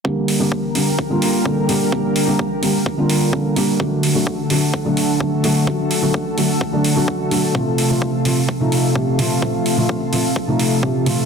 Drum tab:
HH |-o-o-o-o|-o-o-o-o|-o-o-o-o|-o-o-o-o|
BD |o-o-o-o-|o-o-o-o-|o-o-o-o-|o-o-o-o-|

HH |-o-o-o-o|-o-o-o-o|
BD |o-o-o-o-|o-o-o-o-|